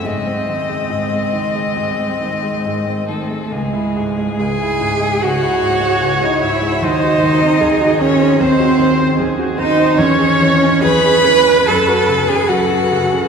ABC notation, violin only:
X:1
M:4/4
L:1/16
Q:1/4=73
K:C#m
V:1 name="Violin"
d12- d2 A2 | G4 g4 f4- f d e2 | d6 c2 ^B4 z2 d2 | c4 b4 a3 g f4 |]